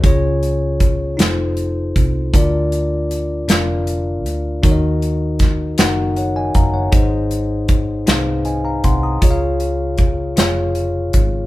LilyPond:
<<
  \new Staff \with { instrumentName = "Tine electric piano" } { \time 6/8 \key des \major \tempo 4. = 52 << { r2. | r2. | r2 <des'' ges''>16 <ees'' aes''>16 <f'' bes''>16 <des'' ges''>16~ | <des'' ges''>16 r4. r16 <ees'' aes''>16 <f'' bes''>16 <ges'' c'''>16 <bes'' ees'''>16~ |
<bes'' ees'''>16 r2 r8. | } \\ { <des' f' aes' des''>4 r8 <ees' f' a' ces'' c''>4 r8 | <d' f' bes' d''>4 r8 <d' f' bes' f''>4 r8 | <ees' ges' bes' des'' ees''>4 r8 <ees' ges' bes' ges''>4 r8 | <ees' aes' c'' ees''>4 r8 <ees' aes' ces'' c'' f''>4 r8 |
<f' aes' des'' ees'' f''>4 r8 <f' aes' des'' f''>4 r8 | } >> }
  \new Staff \with { instrumentName = "Tine electric piano" } { \clef bass \time 6/8 \key des \major des4. r4. | d4. r4. | ees4. r4. | aes,4. r4. |
des4. r4. | }
  \new Staff \with { instrumentName = "Fingered electric bass" } { \clef bass \time 6/8 \key des \major des,4. f,,4 c,8 | d,4. f,,4 d,8 | ees,4. ges,,4 ges,,8 | aes,,4. c,4 c,8 |
des,4. f,,4 aes,,8 | }
  \new DrumStaff \with { instrumentName = "Drums" } \drummode { \time 6/8 <hh bd>8 hh8 <hh bd>8 <hh sn>8 hh8 <hh bd>8 | <hh bd>8 hh8 hh8 <hh sn>8 hh8 hh8 | <hh bd>8 hh8 <hh bd sn>8 <hh sn>8 hh8 <hh bd>8 | <hh bd>8 hh8 <hh bd>8 <hh sn>8 hh8 <hh bd>8 |
<hh bd>8 hh8 <hh bd>8 <hh sn>8 hh8 <hh bd>8 | }
>>